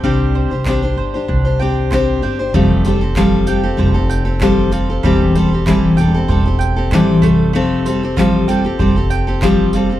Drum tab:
TB |--------|-x-x-x-x|-x-x-x-x|-x-x-x-x|
CP |--x---x-|--x---x-|--x---x-|--x---x-|
BD |o-o-o-o-|o-o-o-o-|o-o-o-oo|--o-o-o-|